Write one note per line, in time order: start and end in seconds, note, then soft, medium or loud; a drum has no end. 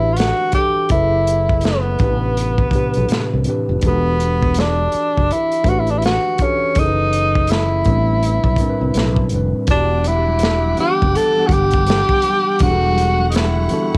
0.00 0.31 A1 medium
0.00 0.43 E3 medium
0.00 0.55 D4 medium
0.00 0.14 E4 medium
0.00 0.55 F#4 medium
0.00 0.56 G4 medium
0.00 0.57 A4 medium
0.00 0.45 B4 medium
0.13 0.19 F4 medium
0.13 closed hi-hat medium
0.17 0.54 F#4 medium
0.17 snare loud
0.52 0.85 E3 medium
0.52 0.86 D4 medium
0.52 0.86 F#4 medium
0.52 0.88 G4 medium
0.52 kick medium
0.52 closed hi-hat medium
0.56 0.87 G4 medium
0.56 0.87 A4 medium
0.89 1.96 F#1 medium
0.89 2.00 F#3 medium
0.89 2.01 E4 medium
0.89 1.66 E4 medium
0.89 2.01 G#4 medium
0.89 kick loud
0.89 closed hi-hat medium
0.93 2.02 A4 medium
0.93 2.02 B4 medium
1.27 closed hi-hat medium
1.49 kick medium
1.61 3.47 B3 medium
1.61 closed hi-hat medium
1.65 snare medium
1.99 2.64 A1 medium
1.99 2.62 A2 medium
1.99 2.63 E3 medium
1.99 2.09 B3 soft
1.99 2.64 D4 medium
1.99 2.64 G4 medium
1.99 kick medium
1.99 closed hi-hat soft
2.03 2.64 B4 medium
2.07 2.67 C3 medium
2.37 closed hi-hat medium
2.58 kick medium
2.71 3.35 A2 medium
2.71 3.36 C3 medium
2.71 3.36 E3 medium
2.71 3.37 D4 medium
2.71 muted fretless electric bass stroke soft
2.71 kick medium
2.71 closed hi-hat medium
2.75 3.37 G4 medium
2.75 3.38 B4 medium
2.94 3.09 B1 medium
2.94 closed hi-hat soft
3.09 snare loud
3.09 closed hi-hat medium
3.33 3.46 C2 medium
3.44 3.77 A2 medium
3.44 3.78 E3 medium
3.44 3.78 C4 medium
3.44 3.79 D4 medium
3.44 closed hi-hat medium
3.48 3.79 G4 medium
3.48 3.79 B4 medium
3.69 3.82 F1 medium
3.81 4.89 E1 medium
3.81 5.05 E3 medium
3.81 5.05 D4 medium
3.81 5.06 F#4 medium
3.81 5.06 G4 medium
3.81 kick loud
3.81 closed hi-hat medium
3.86 4.62 B3 medium
3.86 5.07 A4 medium
4.20 closed hi-hat medium
4.43 kick medium
4.54 closed hi-hat medium
4.59 5.34 D4 medium
4.59 snare medium
4.92 muted fretless electric bass stroke soft
4.92 closed hi-hat soft
5.17 5.30 F#1 medium
5.17 kick medium
5.31 5.70 E4 medium
5.31 closed hi-hat medium
5.52 closed hi-hat soft
5.64 6.17 A1 medium
5.64 6.29 E3 medium
5.64 6.30 D4 medium
5.64 kick medium
5.64 closed hi-hat medium
5.69 6.30 F#4 medium
5.69 5.81 F#4 medium
5.69 6.30 G4 medium
5.69 6.31 B4 medium
5.79 5.92 E4 medium
5.87 5.99 D4 medium
5.87 closed hi-hat soft
5.98 6.04 E4 medium
6.02 6.44 F#4 medium
6.02 snare medium
6.02 closed hi-hat medium
6.38 6.70 E3 medium
6.38 6.71 D4 medium
6.38 6.71 F#4 medium
6.38 6.72 G4 medium
6.38 kick medium
6.38 closed hi-hat medium
6.42 6.80 C#4 medium
6.42 6.72 A4 medium
6.75 7.82 F#1 medium
6.75 7.86 E3 medium
6.75 7.85 F#3 medium
6.75 7.86 C#4 medium
6.75 7.52 D#4 loud
6.75 7.86 G#4 medium
6.75 7.87 A4 medium
6.75 6.85 A#4 medium
6.75 kick medium
6.75 closed hi-hat medium
6.86 7.89 B4 medium
7.13 closed hi-hat medium
7.35 kick medium
7.47 9.33 E4 medium
7.47 closed hi-hat medium
7.52 snare medium
7.84 8.37 A1 medium
7.84 8.49 A2 medium
7.84 8.49 G3 medium
7.84 8.50 C4 medium
7.84 kick medium
7.84 closed hi-hat soft
7.89 8.50 D4 medium
7.89 8.51 B4 medium
8.23 closed hi-hat medium
8.44 8.57 B1 medium
8.44 kick medium
8.56 9.22 A2 medium
8.56 9.22 G3 medium
8.56 kick medium
8.56 closed hi-hat medium
8.61 9.23 C4 medium
8.61 9.23 D4 medium
8.61 8.69 A#4 medium
8.70 9.27 B4 medium
8.81 8.94 C2 medium
8.94 9.27 B1 medium
8.94 snare loud
8.94 closed hi-hat medium
9.16 kick medium
9.29 9.52 F1 medium
9.29 9.63 A2 medium
9.29 9.64 G3 medium
9.29 closed hi-hat medium
9.33 9.64 C4 medium
9.33 9.65 D4 medium
9.33 9.65 B4 medium
9.67 10.74 E1 medium
9.67 10.62 E3 medium
9.67 13.98 G3 medium
9.67 10.62 B3 medium
9.67 10.62 D4 medium
9.67 10.09 D4 medium
9.67 10.63 F#4 medium
9.67 13.98 F#5 medium
9.67 12.58 D6 medium
9.67 kick loud
9.67 closed hi-hat medium
9.72 10.64 G4 medium
10.04 closed hi-hat medium
10.04 muted conga soft
10.04 high conga soft
10.08 10.80 E4 medium
10.27 high conga medium
10.39 closed hi-hat medium
10.43 snare loud
10.64 high conga medium
10.76 11.24 E3 medium
10.76 11.25 B3 medium
10.76 11.26 D4 medium
10.76 11.18 G4 medium
10.76 11.26 F#5 medium
10.76 muted fretless electric bass stroke soft
10.76 closed hi-hat medium
10.76 muted conga soft
10.76 low conga medium
10.81 11.26 G4 medium
11.02 11.14 F#1 medium
11.02 kick medium
11.15 11.48 A4 loud
11.15 closed hi-hat medium
11.15 muted conga soft
11.37 12.41 E3 medium
11.37 12.41 B3 medium
11.37 12.42 D4 medium
11.37 12.42 F#5 medium
11.41 12.43 G4 medium
11.47 12.02 G1 medium
11.47 11.54 F#4 medium
11.47 kick loud
11.47 muted conga soft
11.47 high conga medium
11.51 12.62 G4 loud
11.51 closed hi-hat medium
11.71 kick medium
11.71 closed hi-hat soft
11.87 snare loud
11.87 closed hi-hat medium
12.09 kick medium
12.09 low conga medium
12.22 closed hi-hat medium
12.22 muted conga soft
12.22 high conga medium
12.59 13.67 E1 medium
12.59 13.54 E3 medium
12.59 13.55 B3 medium
12.59 13.56 D4 medium
12.59 13.26 F#4 loud
12.59 13.98 C#6 medium
12.59 kick loud
12.59 closed hi-hat medium
12.64 13.56 F#4 medium
12.64 12.71 G#4 medium
12.71 13.60 A4 medium
12.96 closed hi-hat medium
12.96 muted conga soft
12.96 high conga soft
13.18 high conga medium
13.30 13.37 D#4 medium
13.30 closed hi-hat medium
13.35 13.98 E4 medium
13.35 snare loud
13.56 high conga medium
13.69 13.98 E3 medium
13.69 13.98 B3 medium
13.69 13.98 D4 medium
13.69 13.98 F#4 medium
13.69 muted fretless electric bass stroke soft
13.69 closed hi-hat medium
13.69 muted conga soft
13.69 low conga medium
13.74 13.98 A4 medium